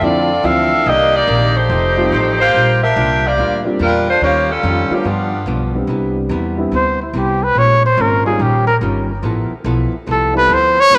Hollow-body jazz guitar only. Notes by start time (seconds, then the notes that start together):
0.01 D3 F3 C4 E4
0.43 D3 F3 C4 E4
0.85 C3 D#3 A#3 D4
1.27 C3 D#3 A#3 D4
1.70 F3 A3 D#4 G4
2.12 F3 A3 D#4 G4
2.54 A#2 G3 D4 F4
2.96 A#2 G3 D4 F4
3.38 A#2 G3 D4 F4
3.79 A#2 G3 D4 F4
4.21 D#3 G3 C#4 F4
4.63 D#3 G3 C#4 F4
5.04 G2 F3 B3 D4
5.46 G2 F3 B3 D4
5.88 C3 G3 B3 E4
6.30 C3 G3 B3 E4
6.71 C3 G3 B3 E4
7.14 C3 G3 B3 E4
7.55 A#2 G#3 C#4 F4
7.97 A#2 G#3 C#4 F4
8.39 D#3 G3 C#4 F4
8.82 D#3 G3 C#4 F4
9.23 F3 B3 E4 A4
9.65 F3 B3 E4 A4
10.07 F3 B3 E4 A4
10.50 F3 B3 E4 A4
10.90 C#3 B3 E4 G#4